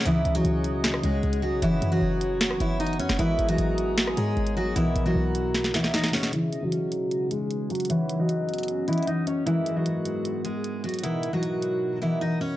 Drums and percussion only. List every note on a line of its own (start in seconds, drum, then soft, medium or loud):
0.01 snare loud
0.06 closed hi-hat medium
0.25 closed hi-hat medium
0.35 closed hi-hat medium
0.45 closed hi-hat medium
0.64 closed hi-hat medium
0.84 finger snap loud
0.84 snare loud
0.84 closed hi-hat medium
0.94 cross-stick loud
1.03 closed hi-hat medium
1.23 closed hi-hat soft
1.33 closed hi-hat medium
1.62 closed hi-hat medium
1.82 closed hi-hat medium
2.21 closed hi-hat medium
2.41 finger snap loud
2.41 snare loud
2.41 closed hi-hat medium
2.51 cross-stick loud
2.60 closed hi-hat medium
2.80 closed hi-hat medium
2.87 closed hi-hat medium
2.93 closed hi-hat soft
3.00 closed hi-hat medium
3.09 finger snap medium
3.09 snare medium
3.19 closed hi-hat medium
3.39 closed hi-hat medium
3.49 closed hi-hat medium
3.58 closed hi-hat medium
3.78 closed hi-hat medium
3.98 finger snap loud
3.98 snare loud
3.98 closed hi-hat medium
4.07 cross-stick loud
4.17 closed hi-hat medium
4.37 closed hi-hat soft
4.47 closed hi-hat medium
4.76 closed hi-hat medium
4.96 closed hi-hat medium
5.35 closed hi-hat medium
5.54 snare medium
5.54 closed hi-hat medium
5.64 snare medium
5.74 snare medium
5.74 closed hi-hat medium
5.84 snare medium
5.94 snare loud
5.94 closed hi-hat medium
5.99 closed hi-hat medium
6.04 snare medium
6.04 closed hi-hat medium
6.08 closed hi-hat medium
6.13 snare loud
6.13 open hi-hat medium
6.23 snare loud
6.33 closed hi-hat medium
6.53 closed hi-hat medium
6.72 closed hi-hat medium
6.92 closed hi-hat medium
7.11 closed hi-hat medium
7.31 closed hi-hat medium
7.51 closed hi-hat medium
7.70 closed hi-hat soft
7.75 closed hi-hat medium
7.80 closed hi-hat medium
7.85 closed hi-hat medium
7.90 closed hi-hat medium
8.09 closed hi-hat medium
8.29 closed hi-hat medium
8.49 closed hi-hat soft
8.54 closed hi-hat medium
8.58 closed hi-hat medium
8.63 closed hi-hat medium
8.68 closed hi-hat medium
8.88 closed hi-hat medium
8.93 closed hi-hat medium
8.98 closed hi-hat medium
9.03 closed hi-hat medium
9.07 closed hi-hat medium
9.27 closed hi-hat medium
9.47 closed hi-hat medium
9.66 closed hi-hat medium
9.86 closed hi-hat medium
10.05 closed hi-hat medium
10.25 closed hi-hat medium
10.45 closed hi-hat medium
10.64 closed hi-hat medium
10.84 closed hi-hat soft
10.89 closed hi-hat medium
10.94 closed hi-hat medium
10.99 closed hi-hat medium
11.04 closed hi-hat medium
11.23 closed hi-hat medium
11.43 closed hi-hat medium
11.62 closed hi-hat medium